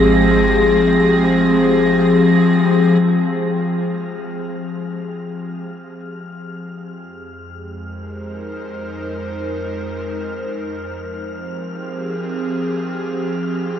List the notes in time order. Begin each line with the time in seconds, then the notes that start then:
Already playing: G#1 F3 G#3 C4 G4 G#4 A#6
3.03 F6
6.98 F2
7.28 G#3
7.64 C5
7.78 D#4 A#4
10.86 F3
11.03 C4
11.33 G4 G#4